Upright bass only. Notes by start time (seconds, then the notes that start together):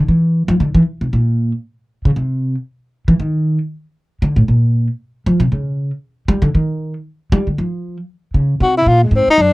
0.08 E3
0.48 F3
0.60 D3
0.75 E3
1.01 C3
1.13 A#2
2.05 C#3
2.16 C3
3.08 E3
3.20 D#3
4.22 D3
4.36 A2
4.48 A#2
5.26 F3
5.40 C3
5.52 C#3
6.28 G3
6.42 D3
6.55 D#3
7.32 G3
7.47 D3
7.58 F3
8.34 C#3
8.60 C3
8.86 A#2
9.11 G#2
9.27 muted upright bass stroke
9.38 F#2